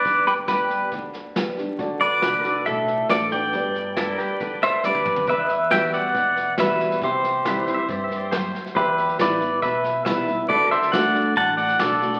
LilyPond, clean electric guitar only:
\new Staff \with { instrumentName = "Clean electric guitar" } { \time 4/4 \key g \major \tempo 4 = 138 r1 | r1 | r4 e'8 g'8 b'8 e''8 d''8. r16 | r1 |
r4 \tuplet 3/2 { r4 e''8 d''8 e''8 d''8 } c''8. r16 | r1 | r1 | }